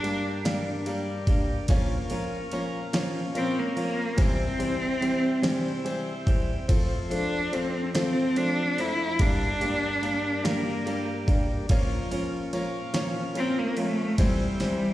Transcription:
Already playing: G2 G3 A#3 D4
0.03 G3 A#3 D4 G4, ride
0.45 G2 D3 G3 A#3 D4 G4, snare, ride
0.86 G3 A#3 D4 G4, ride
1.27 G3 A#3 D4 G4, kick, ride
1.68 A#2 F3 A#3 C#4 F4 A#4, kick, ride
2.10 F3 A#3 C#4 F4 A#4, ride
2.52 F3 A#3 C#4 F4 A#4, ride
2.93 A#2 F3 A#3 C#4 F4 A#4, snare, ride
3.34 F3 A#3 C4 C#4 F4 A#4, ride
3.59 A#3
3.76 F3 A#3 C#4 F4 A#4, ride
4.17 C3 E3 G3 C4 E4 G4, kick, ride
4.21 C4
4.59 E3 G3 C4 E4 G4, ride
5.01 E3 G3 C4 E4 G4, ride
5.42 C3 E3 G3 C4 E4 G4, snare, ride
5.84 E3 G3 C4 E4 G4, ride
6.26 E3 G3 C4 E4 G4, kick, ride
6.68 F2 F3 A3 C4 F4 A4, kick, ride
7.10 F3 A3 C4 D4 F4 A4, ride
7.52 F3 A3 C4 F4 A4, ride
7.94 F3 A3 C4 F4 A4, snare, ride
8.36 F3 A3 C4 D4 F4 A4, ride
8.78 F3 A3 C4 E4 A4, ride
9.19 G2 D3 G3 A#3 D4 G4, kick, ride
9.60 G3 A#3 D4 G4, ride
10.02 G3 A#3 D4 G4, ride
10.44 G2 D3 G3 A#3 D4 G4, snare, ride
10.86 G3 A#3 D4 G4, ride
11.28 G3 A#3 D4 G4, kick, ride
11.69 A#2 F3 A#3 C#4 F4 A#4, kick, ride
12.11 F3 A#3 C#4 F4 A#4, ride
12.53 F3 A#3 C#4 F4 A#4, ride
12.94 A#2 F3 A#3 C#4 F4 A#4, snare, ride
13.35 F3 A#3 C4 C#4 F4 A#4, ride
13.59 A#3
13.77 F3 A3 A#3 C#4 F4, ride
14.18 C3 E3 G3 C4 E4 G4, kick, snare, ride
14.60 E3 G3 C4 E4 G4, snare, ride

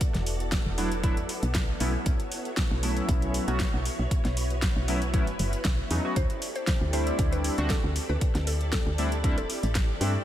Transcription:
Already playing: B3 E4 F#4 A4 D5
0.01 kick, closed hi-hat
0.14 E1, snare, closed hi-hat
0.26 open hi-hat
0.40 closed hi-hat
0.52 kick, snare, closed hi-hat
0.66 E1
0.78 F#3 A3 B3 D4 E4, open hi-hat
0.92 closed hi-hat
1.03 F#3 A3 B3 D4 E4, kick, closed hi-hat
1.17 E2, closed hi-hat
1.29 open hi-hat
1.43 B1, closed hi-hat
1.55 kick, snare, closed hi-hat
1.80 B1 F#3 A3 B3 C#4 E4 F#4 C#5, open hi-hat
2.06 B1, kick, closed hi-hat
2.20 closed hi-hat
2.32 open hi-hat
2.45 closed hi-hat
2.57 kick, snare, closed hi-hat
2.71 B1
2.83 F#3 A3 B3 C#4 E4, open hi-hat
2.97 closed hi-hat
3.09 B1, kick, closed hi-hat
3.22 closed hi-hat
3.34 open hi-hat
3.48 B1 F#3 A3 B3 C#4 F#4, closed hi-hat
3.60 kick, snare, closed hi-hat
3.74 B1
3.85 B4, open hi-hat
3.99 B1
4.11 kick, closed hi-hat
4.25 B1, snare, closed hi-hat
4.37 open hi-hat
4.50 closed hi-hat
4.62 kick, snare, closed hi-hat
4.76 B1
4.88 F#3 A3 B3 C#4 E4, open hi-hat
5.02 closed hi-hat
5.13 F#3 A3 B3 C#4 E4, kick, closed hi-hat
5.27 F#1, closed hi-hat
5.39 F#1, open hi-hat
5.53 closed hi-hat
5.65 B1, kick, snare, closed hi-hat
5.90 E2 F#3 A3 B3 C#4 D#4, open hi-hat
6.04 F#3 A3 B3 C#4 F#4
6.16 D2 C4 G4 A4 C5 D5, kick, closed hi-hat
6.30 closed hi-hat
6.42 open hi-hat
6.55 C5, closed hi-hat
6.67 kick, snare, closed hi-hat
6.81 D2
6.93 G3 A3 C4 D4 E4 C5, open hi-hat
7.07 closed hi-hat
7.19 D2, kick, closed hi-hat
7.33 B4, closed hi-hat
7.44 open hi-hat
7.58 D2 G3 A3 C4 D4 F#4, closed hi-hat
7.70 A4, kick, snare, closed hi-hat
7.84 D2
7.96 open hi-hat
8.09 D2 B4
8.21 kick, closed hi-hat
8.35 D2, snare, closed hi-hat
8.47 A4, open hi-hat
8.61 closed hi-hat
8.73 A4, kick, snare, closed hi-hat
8.86 D2
8.98 G3 A3 C4 D4 E4, open hi-hat
9.12 closed hi-hat
9.24 G3 A3 C4 D4 E4, kick, closed hi-hat
9.38 D1 A4, closed hi-hat
9.50 open hi-hat
9.63 A1, closed hi-hat
9.75 kick, snare, closed hi-hat
10.01 G2 G3 A3 C4 D4 E4, open hi-hat

